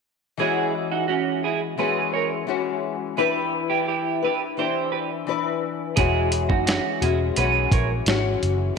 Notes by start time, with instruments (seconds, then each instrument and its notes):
0.37 nylon-string guitar E3 G#3 C#4 F#4, clean electric guitar E4 G#4
0.92 clean electric guitar D#4 F#4
1.08 clean electric guitar C#4 F#4
1.44 clean electric guitar E4 G#4
1.78 nylon-string guitar E3 G#3 C#4 F#4, clean electric guitar G#4 B4
2.14 clean electric guitar A#4 C#5
2.47 nylon-string guitar E3 G#3 C#4 F#4
3.17 nylon-string guitar E3 D4 E4 B4, clean electric guitar G4 B4
3.70 clean electric guitar E4 G4
3.88 clean electric guitar E4 G4
4.22 nylon-string guitar D4 E4 B4, clean electric guitar G4 B4
4.57 nylon-string guitar E3 D4 E4, clean electric guitar G4 C5
4.92 clean electric guitar G4 B4
5.27 nylon-string guitar E3 D4 E4 B4
5.96 picked electric bass E1, nylon-string guitar E3 G#3 C#4 F#4, clean electric guitar E4 G#4, kick, closed hi-hat
6.32 closed hi-hat
6.49 picked electric bass F#1, clean electric guitar D#4 F#4, kick
6.67 clean electric guitar C#4 F#4, snare, closed hi-hat
7.01 picked electric bass E1, nylon-string guitar G#3 C#4 F#4, clean electric guitar E4 G#4, closed hi-hat
7.36 picked electric bass B1, nylon-string guitar E3 G#3 C#4 F#4, clean electric guitar G#4 B4, closed hi-hat
7.72 picked electric bass A#1, clean electric guitar A#4 C#5, kick, closed hi-hat
8.06 picked electric bass G#1, nylon-string guitar E3 G#3 C#4 F#4, snare, closed hi-hat
8.43 picked electric bass F#1, closed hi-hat